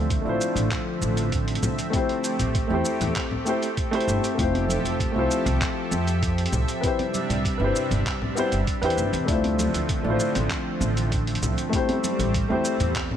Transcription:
Already playing: upright bass D2, analog synth pad D3 F3 A3 C4 E5, grand piano A3 D4 E4 F4 C5
0.10 kick, closed hi-hat, shaker
0.21 grand piano A3 D4 E4
0.26 upright bass A1, grand piano F4 C5
0.41 shaker
0.55 upright bass A1, closed hi-hat, shaker
0.71 kick, clap, closed hi-hat, shaker
1.02 upright bass A1, shaker
1.17 closed hi-hat, shaker
1.32 kick, closed hi-hat, shaker
1.48 closed hi-hat
1.55 closed hi-hat
1.63 upright bass C2, low conga, shaker
1.79 closed hi-hat, shaker
1.90 grand piano A3 C4 E4, analog synth pad A3 G4, kick, closed hi-hat, shaker
1.95 grand piano G4 C5
2.09 closed hi-hat
2.24 closed hi-hat, shaker
2.39 upright bass A1, closed hi-hat, low conga, shaker
2.55 kick, closed hi-hat, shaker
2.67 upright bass E2, grand piano A3 C4 E4
2.72 grand piano G4 C5
2.85 shaker
3.01 upright bass E2, closed hi-hat, low conga, shaker
3.16 kick, clap, closed hi-hat, shaker
3.31 low conga
3.45 grand piano A3 C4 E4 G4 C5, shaker
3.62 closed hi-hat, shaker
3.77 kick, closed hi-hat, shaker
3.91 grand piano A3 C4 E4 G4 C5, closed hi-hat
4.01 closed hi-hat
4.08 upright bass G1, shaker
4.24 closed hi-hat, shaker
4.35 upright bass F1, grand piano A3 C4 E4, analog synth pad G4, kick
4.39 analog synth pad F3 A4 E5, grand piano F4 C5, closed hi-hat, shaker
4.55 closed hi-hat, high conga
4.69 closed hi-hat, low conga, shaker
4.85 upright bass F1, closed hi-hat, shaker
5.00 kick, closed hi-hat, shaker
5.12 upright bass C2, grand piano A3 C4 E4
5.17 grand piano F4 C5
5.31 shaker
5.46 upright bass C2, closed hi-hat, high conga, shaker
5.61 kick, clap, closed hi-hat, shaker
5.91 upright bass F2, high conga, shaker
6.07 closed hi-hat, shaker
6.23 kick, closed hi-hat, shaker
6.38 closed hi-hat
6.46 closed hi-hat
6.52 upright bass C2, low conga, shaker
6.68 closed hi-hat, shaker
6.81 grand piano C4 E4 B4, analog synth pad D4, kick, closed hi-hat, shaker
6.85 analog synth pad C3 G3, grand piano G4 C5
6.99 closed hi-hat, high conga
7.14 closed hi-hat, low conga, shaker
7.30 upright bass C2, closed hi-hat, low conga, shaker
7.45 kick, closed hi-hat, shaker
7.58 upright bass G1, grand piano C4 E4 B4
7.63 grand piano G4 C5
7.76 shaker
7.91 upright bass G1, closed hi-hat, high conga, low conga, shaker
8.06 kick, clap, closed hi-hat, shaker
8.22 low conga
8.35 grand piano B3 C4 E4 G4 C5, high conga, shaker
8.52 upright bass G1, closed hi-hat, shaker
8.67 kick, closed hi-hat, shaker
8.81 upright bass E2, grand piano C4 E4 G4 B4 C5, closed hi-hat
8.90 closed hi-hat
8.97 upright bass G1, shaker
9.13 upright bass E2, closed hi-hat, shaker
9.25 upright bass D2, analog synth pad D3 F3 A3 C4, grand piano A3 D4 E4, kick, closed hi-hat, shaker
9.31 grand piano F4 C5
9.44 closed hi-hat, high conga
9.59 closed hi-hat, low conga, shaker
9.74 upright bass D2, closed hi-hat, shaker
9.89 kick, closed hi-hat, shaker
10.03 upright bass A1, grand piano A3 D4 E4
10.08 grand piano F4 C5
10.20 shaker
10.35 upright bass A1, closed hi-hat, high conga, shaker
10.50 kick, clap, closed hi-hat, shaker
10.81 upright bass A1, high conga, shaker
10.97 closed hi-hat, shaker
11.12 kick, closed hi-hat, shaker
11.27 closed hi-hat
11.35 closed hi-hat
11.42 upright bass C2, low conga, shaker
11.58 closed hi-hat, shaker
11.69 analog synth pad G3 C4, grand piano A3 C4 E4, kick, closed hi-hat, shaker
11.75 grand piano G4 C5
11.89 closed hi-hat, high conga
12.04 closed hi-hat, low conga, shaker
12.19 upright bass A1, closed hi-hat, low conga, shaker
12.34 kick, closed hi-hat, shaker
12.49 upright bass E2, grand piano A3 C4 E4 G4 C5
12.65 shaker
12.80 upright bass E2, closed hi-hat, high conga, low conga, shaker
12.96 analog synth pad F4, kick, clap, closed hi-hat, shaker
13.11 low conga

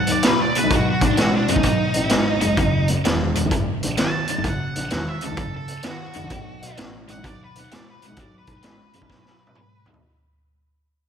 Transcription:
Already playing: overdriven electric guitar B2 F#3, lead electric guitar F#5
0.07 grand piano D#2, closed hi-hat
0.12 lead electric guitar D5
0.23 overdriven electric guitar B2 G#3, lead electric guitar B4, snare, closed hi-hat
0.42 lead electric guitar D5
0.55 overdriven electric guitar B2 G#3, lead electric guitar B4, closed hi-hat
0.64 grand piano B1
0.70 grand piano B1, overdriven electric guitar B2 F#3, kick, closed hi-hat
0.75 lead electric guitar F#4
0.90 lead electric guitar F#4
1.01 grand piano D#2, kick, closed hi-hat
1.05 lead electric guitar D4
1.17 grand piano A1, overdriven electric guitar B2 G#3, lead electric guitar F#4, snare, closed hi-hat
1.36 lead electric guitar D4
1.48 grand piano F#2, overdriven electric guitar B2 G#3, lead electric guitar D#4, closed hi-hat
1.56 grand piano B1, kick
1.63 overdriven electric guitar B2 F#3, kick, closed hi-hat
1.94 grand piano A1, closed hi-hat
2.09 grand piano G#1, overdriven electric guitar B2 G#3, snare, closed hi-hat
2.41 grand piano F#1, overdriven electric guitar B2 G#3, closed hi-hat
2.57 grand piano F#1, overdriven electric guitar F#2 C#3, kick, closed hi-hat
2.88 grand piano F#2, closed hi-hat
3.04 grand piano E1, overdriven electric guitar F#2 D#3, snare, closed hi-hat
3.35 grand piano E1, overdriven electric guitar F#2 D#3, closed hi-hat
3.46 grand piano F#1
3.51 overdriven electric guitar F#2 C#3, kick, closed hi-hat
3.83 grand piano A#1, closed hi-hat
3.97 overdriven electric guitar F#2 D#3, lead electric guitar A5, snare, closed hi-hat
4.28 overdriven electric guitar F#2 D#3, closed hi-hat
4.38 grand piano F#1
4.44 grand piano F#1, overdriven electric guitar F#2 C#3, lead electric guitar F#5, kick, closed hi-hat
4.76 grand piano A#1, closed hi-hat
4.90 grand piano E1, overdriven electric guitar F#2 D#3, snare, closed hi-hat
5.09 lead electric guitar E5
5.21 grand piano C#2, overdriven electric guitar F#2 D#3, closed hi-hat
5.25 lead electric guitar A4
5.32 grand piano F#1
5.37 overdriven electric guitar F#2 C#3, kick, closed hi-hat
5.57 lead electric guitar A4
5.68 closed hi-hat
5.83 overdriven electric guitar F#2 D#3, snare, closed hi-hat
5.87 lead electric guitar F#4
6.13 grand piano F#1, overdriven electric guitar F#2 D#3, closed hi-hat
6.24 grand piano A#1
6.30 grand piano B1, overdriven electric guitar B2 F#3, kick, closed hi-hat
6.62 grand piano B2, closed hi-hat
6.77 grand piano A1, overdriven electric guitar B2 G#3, snare, closed hi-hat
7.08 grand piano A1, overdriven electric guitar B2 G#3, lead electric guitar F#5, closed hi-hat
7.17 grand piano B1
7.24 overdriven electric guitar B2 F#3, lead electric guitar D5, kick, closed hi-hat
7.44 lead electric guitar B4
7.56 grand piano D#2, lead electric guitar F#5, closed hi-hat
7.71 overdriven electric guitar B2 G#3, lead electric guitar D5, snare, closed hi-hat
7.90 lead electric guitar B4
8.02 overdriven electric guitar B2 G#3, closed hi-hat
8.06 grand piano B1, lead electric guitar F#5
8.16 grand piano B1, overdriven electric guitar B2 F#3, lead electric guitar D5, kick, closed hi-hat
8.38 lead electric guitar B4
8.47 grand piano D#2, kick, closed hi-hat
8.51 lead electric guitar B4
8.63 grand piano A1, overdriven electric guitar B2 G#3, snare, closed hi-hat
8.93 grand piano F#2, overdriven electric guitar B2 G#3, closed hi-hat
9.02 grand piano B1, kick
9.09 overdriven electric guitar B2 F#3, kick, snare
9.26 snare
9.47 high tom
9.55 overdriven electric guitar B2 G#3, mid tom
9.86 grand piano B1, overdriven electric guitar B2 G#3, floor tom
9.94 grand piano B2, floor tom

